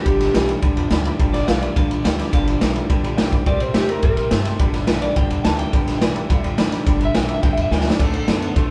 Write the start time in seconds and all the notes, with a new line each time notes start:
Already playing: G4
0.05 G1 G2 D3 F3 B3 F4 G4 D5 G5 B5, kick, ride
0.19 F3 B3 F4 G4 D5 G5 B5, snare, ride
0.33 B1 G2 D3 E3 F3 B3 F4 G4 D5 G5 B5, snare, ride
0.47 F3 B3 F4 G4 D5 G5 B5, ride
0.61 D2 G2 D3 F3 B3 F4 G4 D5 G5 B5, kick, ride
0.76 E2 F3 B3 F4 G4 D5 G5 B5, ride
0.90 D2 G2 D3 E3 F3 B3 F4 G4 D5 G5 B5, snare, ride
1.04 F3 B3 F4 G4 D5 G5 B5, ride
1.19 G1 G2 D3 F3 B3 F4 G4 D5 G5 B5, kick, ride
1.32 F3 B3 F4 G4 D5 G5 B5, snare, ride
1.47 B1 G2 D3 E3 F3 B3 F4 G4 D5 F5 G5 B5, snare, ride
1.61 F3 B3 F4 G4 D5 G5 B5, ride
1.75 D2 G2 D3 F3 B3 F4 G4 D5 F5 G5 B5, kick, ride
1.89 E2 F3 B3 F4 G4 D5 G5 B5, ride
2.04 D2 G2 D3 E3 F3 B3 F4 G4 D5 F5 G5 B5, snare, ride
2.18 F3 B3 F4 G4 D5 G5 B5, snare, ride
2.33 G1 G2 D3 F3 B3 F4 G4 D5 F5 G5 B5, kick, ride
2.47 F3 B3 F4 G4 D5 G5 B5, ride
2.61 B1 G2 D3 E3 F3 B3 F4 G4 D5 G5 B5, snare, ride
2.75 F3 B3 F4 G4 D5 G5 B5, ride
2.89 D2 G2 D3 F3 B3 F4 G4 D5 G5 B5, kick, ride
3.03 E2 F3 B3 F4 G4 D5 G5 B5, ride
3.17 B1 G2 D3 E3 F3 B3 F4 G4 D5 G5 B5, snare, ride
3.31 F3 B3 F4 G4 D5 G5 B5, kick, ride
3.45 C2 C3 G3 A#3 E4 G4 D5 E5 G5 C6, kick, ride
3.59 E4 G4 C5 E5 G5 C6, ride
3.74 E2 C3 G3 A3 A#3 E4 G4 E5 G5 C6, snare, ride
3.88 A#3 E4 G4 A#4 E5 G5 C6, ride
4.02 G2 C3 G3 A#3 E4 G4 A#4 E5 G5 C6, kick, ride
4.16 A2 A#3 E4 G4 E5 G5 C6, ride
4.30 G2 C3 G3 A3 A#3 E4 G4 E5 G5 C6, snare, ride
4.45 A#3 E4 G4 E5 G5 C6, snare, ride
4.59 G1 G2 D3 F3 B3 D4 G4 D5 G5 B5, kick, ride
4.74 F3 B3 D4 G4 D5 G5 B5, snare, ride
4.87 B1 G2 D3 E3 F3 B3 D4 G4 B4 D5 G5 B5, snare, ride
5.02 F3 B3 D4 G4 D5 G5 B5, ride
5.16 D2 G2 D3 F3 B3 D4 G4 D5 G5 B5, kick, ride
5.30 E2 F3 B3 D4 G4 D5 G5 B5, ride
5.44 D2 G2 D3 E3 F3 B3 D4 G4 D5 G5 A5 B5, snare, ride
5.58 F3 B3 D4 G4 D5 G5 B5, ride
5.72 G1 G2 D3 F3 B3 D4 G4 D5 G5 B5, kick, ride
5.86 F3 B3 D4 G4 D5 G5 B5, snare, ride
6.00 B1 G2 D3 E3 F3 B3 D4 G4 D5 G5 B5, snare, ride
6.14 F3 B3 D4 G4 D5 G5 B5, ride
6.29 D2 G2 D3 F3 B3 D4 G4 D5 G5 B5, kick, ride
6.43 E2 F3 B3 D4 G4 D5 G5 B5, ride
6.57 D2 G2 D3 E3 F3 B3 D4 G4 D5 G5 B5, snare, ride
6.72 F3 B3 D4 G4 D5 G5 B5, snare, ride
6.86 G1 G2 D3 F3 B3 D4 G4 D5 G5 B5, kick, ride
7.00 F3 B3 D4 G4 D5 G5 B5, ride
7.05 E5
7.14 B1 G2 D3 E3 F3 B3 D4 G4 D5 G5 B5, snare, ride
7.24 G4 D5 E5
7.29 F3 B3 D4 G5 B5, ride
7.34 E5
7.42 D2 G2 D3 F3 B3 D4 G4 D5 G5 B5, kick, ride
7.53 G4 D5 E5
7.57 E2 F3 B3 D4 G5 B5, ride
7.62 E5
7.71 D2 G2 D3 E3 F3 B3 D4 G4 D5 G5 B5, snare
7.81 E5, snare
7.85 F3 B3 D4 G4 D5 G5 B5
7.90 D5, snare
7.99 D2 D3 F#3 A3 C4 D4 A4 D5 F#5 A5, kick, crash, ride
8.13 C4 D4 A4 D5 F#5 A5, ride
8.27 F#2 D3 F#3 B3 C4 D4 A4 D5 F#5 A5, snare, ride
8.41 C4 D4 A4 D5 F#5 A5, ride
8.55 A2 D3 F#3 A3 C4 D4 A4 D5 F#5 C6, kick, ride